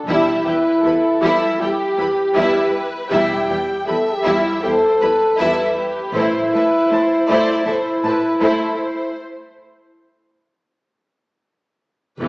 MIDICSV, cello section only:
0, 0, Header, 1, 2, 480
1, 0, Start_track
1, 0, Key_signature, 1, "minor"
1, 0, Tempo, 757576
1, 58, Time_signature, 4, 2, 24, 8
1, 7782, End_track
2, 0, Start_track
2, 0, Title_t, "Cello section"
2, 0, Program_c, 0, 48
2, 51, Note_on_c, 0, 40, 51
2, 102, Note_off_c, 0, 40, 0
2, 290, Note_on_c, 0, 40, 37
2, 340, Note_off_c, 0, 40, 0
2, 530, Note_on_c, 0, 40, 36
2, 581, Note_off_c, 0, 40, 0
2, 776, Note_on_c, 0, 40, 53
2, 827, Note_off_c, 0, 40, 0
2, 1014, Note_on_c, 0, 40, 37
2, 1065, Note_off_c, 0, 40, 0
2, 1257, Note_on_c, 0, 40, 37
2, 1307, Note_off_c, 0, 40, 0
2, 1501, Note_on_c, 0, 40, 59
2, 1551, Note_off_c, 0, 40, 0
2, 1976, Note_on_c, 0, 40, 55
2, 2027, Note_off_c, 0, 40, 0
2, 2219, Note_on_c, 0, 40, 39
2, 2270, Note_off_c, 0, 40, 0
2, 2462, Note_on_c, 0, 40, 39
2, 2512, Note_off_c, 0, 40, 0
2, 2698, Note_on_c, 0, 40, 51
2, 2748, Note_off_c, 0, 40, 0
2, 2942, Note_on_c, 0, 40, 38
2, 2992, Note_off_c, 0, 40, 0
2, 3185, Note_on_c, 0, 40, 39
2, 3235, Note_off_c, 0, 40, 0
2, 3420, Note_on_c, 0, 40, 58
2, 3470, Note_off_c, 0, 40, 0
2, 3901, Note_on_c, 0, 45, 55
2, 3951, Note_off_c, 0, 45, 0
2, 4143, Note_on_c, 0, 45, 38
2, 4193, Note_off_c, 0, 45, 0
2, 4380, Note_on_c, 0, 45, 39
2, 4430, Note_off_c, 0, 45, 0
2, 4617, Note_on_c, 0, 45, 54
2, 4668, Note_off_c, 0, 45, 0
2, 4858, Note_on_c, 0, 45, 37
2, 4908, Note_off_c, 0, 45, 0
2, 5092, Note_on_c, 0, 45, 40
2, 5143, Note_off_c, 0, 45, 0
2, 5332, Note_on_c, 0, 45, 56
2, 5383, Note_off_c, 0, 45, 0
2, 7737, Note_on_c, 0, 40, 49
2, 7782, Note_off_c, 0, 40, 0
2, 7782, End_track
0, 0, End_of_file